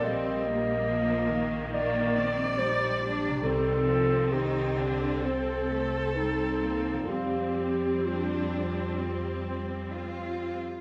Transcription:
<<
  \new Staff \with { instrumentName = "Clarinet" } { \time 4/4 \key ees \lydian \tempo 4 = 65 ees''2 d''4 c''8 r8 | a'4 g'4 c''4 ees'4 | g'4 f'2 r4 | }
  \new Staff \with { instrumentName = "Cello section" } { \time 4/4 \key ees \lydian g8 bes4. bes8 c'8 ees'8 d'8 | c'4 ees'8 d'8 c'8 a8 g8 bes8 | c'4 d'4 c'4 f'4 | }
  \new Staff \with { instrumentName = "Harp" } { \clef bass \time 4/4 \key ees \lydian <bes, g c' g'>1 | <c ees g c'>1 | <f g c' f'>1 | }
  \new Staff \with { instrumentName = "Viola section" } { \clef bass \time 4/4 \key ees \lydian << { c'8 bes4. bes8 d''4. | c'2. c'4 | c'2.~ c'8. r16 | } \\ { g4 f8 ees4. g4 | g8 f8 ees8 d8 a'2 | g2.~ g8. r16 | } >> }
  \new Staff \with { instrumentName = "Double bass section" } { \clef bass \time 4/4 \key ees \lydian bes,,1 | c,1 | f,2.~ f,8. r16 | }
>>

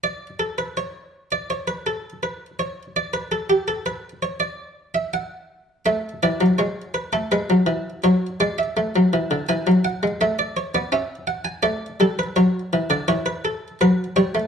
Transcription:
<<
  \new Staff \with { instrumentName = "Harpsichord" } { \time 4/4 \key a \mixolydian \tempo 4 = 83 d''8 a'16 b'16 cis''8. d''16 cis''16 b'16 a'8 b'8 cis''8 | d''16 b'16 a'16 g'16 a'16 b'8 cis''16 d''8. e''16 fis''4 | e''8 d''8 cis''8 b'16 a'16 b'4 cis''8 d''16 e''16~ | e''4 gis''8 fis''8 e''16 d''16 cis''16 d''16 e''8 fis''16 gis''16 |
d''8 a'16 b'16 cis''8. d''16 cis''16 b'16 a'8 b'8 cis''8 | }
  \new Staff \with { instrumentName = "Harpsichord" } { \clef bass \time 4/4 \key a \mixolydian r1 | r1 | a8 e16 fis16 gis8. a16 gis16 fis16 e8 fis8 gis8 | a16 fis16 e16 d16 e16 fis8 gis16 a8. b16 cis'4 |
a8 g8 fis8 e16 d16 e4 fis8 g16 a16 | }
>>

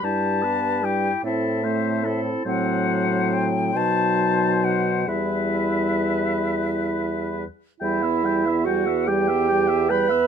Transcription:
<<
  \new Staff \with { instrumentName = "Flute" } { \time 6/8 \key e \minor \tempo 4. = 47 a''4 g''8 e''4. | fis''4 g''8 a''4 fis''8 | e''2~ e''8 r8 | e''4 fis''8 g''4 b''8 | }
  \new Staff \with { instrumentName = "Oboe" } { \time 6/8 \key e \minor g'8 b'8 g'8 a'8 c''8 a'8 | c''4. c''4. | b'2~ b'8 r8 | g''16 e''16 g''16 e''16 g''16 e''16 g''16 e''16 g''16 e''16 g''16 e''16 | }
  \new Staff \with { instrumentName = "Clarinet" } { \time 6/8 \key e \minor e'8 g'8 e'8 e'8 c'8 e'8 | c'8. c'8. dis'4. | e'2~ e'8 r8 | e'4 fis'8 g'4 b'8 | }
  \new Staff \with { instrumentName = "French horn" } { \clef bass \time 6/8 \key e \minor g8 b8 g8 c'8 a8 c'8 | fis4. fis4. | g2~ g8 r8 | g16 b16 g16 b16 g16 b16 g16 b16 g16 b16 g16 b16 | }
  \new Staff \with { instrumentName = "Bassoon" } { \clef bass \time 6/8 \key e \minor g,4. a,4. | a,4. b,4. | e,2~ e,8 r8 | e,2. | }
>>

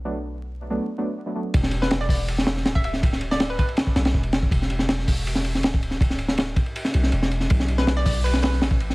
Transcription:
<<
  \new Staff \with { instrumentName = "Synth pluck" } { \time 4/4 \key b \phrygian \tempo 4 = 161 r1 | r8. b'8 d''16 d''16 r4. e''16 e''16 r16 | r8. d''8 b'16 b'16 r2 r16 | r1 |
r1 | r8. b'8 d''16 d''16 r16 b'16 b'16 b'8 r4 | }
  \new Staff \with { instrumentName = "Synth stab" } { \time 4/4 \key b \phrygian <fis a b d'>16 r4. <fis a b d'>8 r16 <fis a b d'>16 r8 <fis a b d'>16 <fis a b d'>16 r16 | r1 | r1 | r1 |
r1 | r1 | }
  \new Staff \with { instrumentName = "808-style bass" } { \clef bass \time 4/4 \key b \phrygian b,,2 r2 | e,,2. d,,4~ | d,,4. r4 b,,8 e,,4 | e,,2. d,,4~ |
d,,4. r4 b,,8 e,,4 | b,,2. a,,4 | }
  \new DrumStaff \with { instrumentName = "Drums" } \drummode { \time 4/4 r4 r4 r4 r4 | <bd cymr>16 sn16 cymr16 sn16 <cymr sn>16 sn16 <hho bd>8 cymr16 sn16 <cymr sn>16 sn16 <cymr sn>16 bd16 cymr16 sn16 | <bd cymr>16 sn16 cymr16 sn16 <cymr sn>8 <bd cymr>16 cymr16 <cymr sn>16 bd16 <cymr sn>16 <cymr sn>16 bd16 cymr16 <cymr sn>16 bd16 | <bd cymr>16 sn16 cymr16 sn16 <cymr sn>16 sn16 <hho bd>8 cymr16 sn16 cymr16 sn16 <cymr sn>16 bd16 cymr16 sn16 |
<bd cymr>16 sn16 cymr16 sn16 <cymr sn>8 <bd cymr>16 cymr16 cymr16 sn16 cymr16 sn16 cymr16 sn16 cymr16 sn16 | <bd cymr>16 sn16 cymr16 sn16 <cymr sn>16 sn16 <hho bd>8 cymr16 sn16 <cymr sn>16 sn16 <cymr sn>16 bd16 cymr16 sn16 | }
>>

